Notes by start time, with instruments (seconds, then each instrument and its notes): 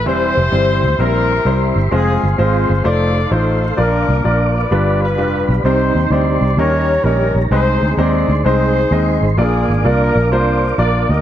Already playing: tonewheel organ E5
0.06 fingered electric bass E1, upright piano E3 G3 C4 E4 C5, horn section E4 G4 C5, tonewheel organ G4 C5 C6
0.37 fingered electric bass F1
0.51 fingered electric bass G1, upright piano G3 C4 E4 C5
0.83 fingered electric bass D2
0.99 fingered electric bass A#1, upright piano G3 C4 E4 C5, horn section E4 G4 A#4
1.45 fingered electric bass C2, upright piano G3 C4 E4 C5
1.76 fingered electric bass G1
1.91 fingered electric bass F1, upright piano G#3 C4 F4 C5, horn section C4 F4 G#4, tonewheel organ G#4 F5
2.23 fingered electric bass G1
2.38 fingered electric bass G#1, upright piano G#3 C4 F4 C5, horn section F4 G#4 C5
2.70 fingered electric bass G1
2.84 fingered electric bass F1, upright piano A3 D#4 F4 C5, tonewheel organ D#4 A4, horn section A4 D5
3.31 fingered electric bass A1, upright piano A3 D#4 F4 C5, horn section D#4 A4 C5
3.76 fingered electric bass A#1, upright piano A#2 A#3 D4 F4 D5, horn section D4 F4 A#4, tonewheel organ A#4 D5 D6
4.09 fingered electric bass C2
4.24 fingered electric bass A#1, upright piano A#3 D4 F4 D5, horn section A#4
4.56 horn section F4 B4 D5
4.71 fingered electric bass G1, upright piano G2 G3 D4 F4 B4, tonewheel organ G4 B5
5.02 horn section D4 F4 B4
5.17 fingered electric bass F1, upright piano G3 D4 F4 B4
5.48 fingered electric bass B1, horn section B4
5.64 fingered electric bass C2, upright piano C3 G3 C4 D#4 C5, horn section D#4 G4 C5, tonewheel organ D#4 C5 C6
5.95 fingered electric bass D#2
6.10 fingered electric bass D2, upright piano G3 C4 D#4 C5, horn section G4 D5
6.41 fingered electric bass C2
6.57 fingered electric bass D#2, upright piano D#3 G3 C#4 D#4 A#4, horn section G4 A#4 C#5, tonewheel organ C#5 A#5
7.04 fingered electric bass A#1, upright piano G3 C#4 D#4 C#5, horn section C#4 G4 A#4
7.35 fingered electric bass A#1
7.51 fingered electric bass C2, upright piano C3 G#3 C4 D#4 C5, horn section D#4 G#4 C5, tonewheel organ G#4 C5 C6
7.82 fingered electric bass D2
7.97 fingered electric bass D#2, upright piano G#3 C4 D#4 C5, horn section G#4 D5
8.28 fingered electric bass D2
8.44 fingered electric bass C2, upright piano G#3 C4 D#4 C5, horn section D#4 G#4 C5
8.91 fingered electric bass D#2, upright piano G#3 C4 D#4 D#5
9.21 fingered electric bass G#1
9.37 fingered electric bass A#1, upright piano A#2 A#3 D4 F4 D5, horn section D4 F4 G#4, tonewheel organ A#4 D5 F5 D6
9.68 fingered electric bass G#1
9.84 fingered electric bass C2, upright piano A#3 D4 F4 D5, horn section D4 F4 A#4
10.15 fingered electric bass A#1
10.31 fingered electric bass C2, upright piano A#3 D4 F4 C5, horn section F4 C5
10.78 fingered electric bass A#1, upright piano A#3 D4 F4 D5, horn section D5
11.09 fingered electric bass D2, horn section G4 A#4 D#5